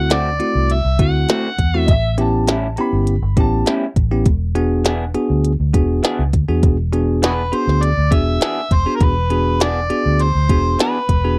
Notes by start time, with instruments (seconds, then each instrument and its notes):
Already playing: fingered electric bass D2, tine electric piano A3 C4 E4 F#4, harmonica F#5
0.10 clean electric guitar D3 A3 C4 F#4, harmonica D5, snare, closed hi-hat
0.40 tine electric piano A3 C4 E4 F#4, closed hi-hat
0.55 fingered electric bass C2
0.70 harmonica E5, closed hi-hat
0.85 fingered electric bass C2
0.99 fingered electric bass D2, tine electric piano A3 C4 E4 F#4, harmonica F#5, kick, closed hi-hat
1.29 clean electric guitar D3 A3 C4 F#4, snare, closed hi-hat
1.59 fingered electric bass E2, kick, closed hi-hat
1.74 tine electric piano A3 C4 E4 F#4
1.80 harmonica E5
1.86 fingered electric bass A1, upright piano D#5, kick, closed hi-hat
1.91 upright piano E5
2.18 tine electric piano B3 C#4 E4 G4, upright piano A5, closed hi-hat
2.48 clean electric guitar A2 G3 C#4 E4, snare, closed hi-hat
2.76 tine electric piano B3 C#4 E4 G4, upright piano A#5, closed hi-hat
2.80 upright piano B5
2.93 fingered electric bass G1
3.07 closed hi-hat
3.22 fingered electric bass G1
3.37 fingered electric bass A1, tine electric piano B3 C#4 E4 G4, upright piano A5, kick, closed hi-hat
3.66 clean electric guitar A2 G3 C#4 E4, snare, closed hi-hat
3.96 fingered electric bass A1, kick, closed hi-hat
4.11 tine electric piano B3 C#4 E4 G4
4.26 fingered electric bass E1, kick, closed hi-hat
4.55 tine electric piano B3 D4 F#4 G#4, closed hi-hat
4.85 clean electric guitar E3 B3 D4 G#4, snare, closed hi-hat
5.15 tine electric piano B3 D4 F#4 G#4, closed hi-hat
5.30 fingered electric bass D2
5.45 closed hi-hat
5.60 fingered electric bass D2
5.74 fingered electric bass E1, tine electric piano B3 D4 F#4 G#4, kick, closed hi-hat
6.03 clean electric guitar E3 B3 D4 G#4, snare, closed hi-hat
6.19 fingered electric bass C#2
6.33 fingered electric bass D2, kick, closed hi-hat
6.48 fingered electric bass E2, tine electric piano B3 D4 F#4 G#4
6.63 fingered electric bass E1, kick, closed hi-hat
6.93 tine electric piano B3 D4 F#4 G#4, closed hi-hat
7.22 clean electric guitar E3 B3 D4 G#4, harmonica F#4 G#4 B4, snare, closed hi-hat
7.52 tine electric piano B3 D4 F#4 G#4, harmonica C5, closed hi-hat
7.67 fingered electric bass D2, snare
7.83 harmonica D5, closed hi-hat
7.97 fingered electric bass D2
8.11 fingered electric bass E1, tine electric piano B3 D4 F#4 G#4, harmonica E5, kick, closed hi-hat
8.41 clean electric guitar E3 B3 D4 G#4, snare, closed hi-hat
8.71 fingered electric bass E1, harmonica C5, kick, closed hi-hat
8.86 tine electric piano B3 D4 F#4 G#4
8.96 harmonica A#4
9.01 fingered electric bass E1, harmonica B4, kick, closed hi-hat
9.30 tine electric piano B3 D4 F#4 G#4, closed hi-hat
9.60 clean electric guitar E3 B3 D4 G#4, harmonica D5, snare, closed hi-hat
9.90 tine electric piano B3 D4 F#4 G#4, closed hi-hat
10.06 fingered electric bass D2
10.19 harmonica C5, closed hi-hat
10.35 fingered electric bass D2
10.49 fingered electric bass E1, tine electric piano B3 D4 F#4 G#4, kick, closed hi-hat
10.79 clean electric guitar E3 B3 D4 G#4, harmonica B4, snare, closed hi-hat
11.09 fingered electric bass E1, kick, closed hi-hat
11.24 tine electric piano B3 D4 F#4 G#4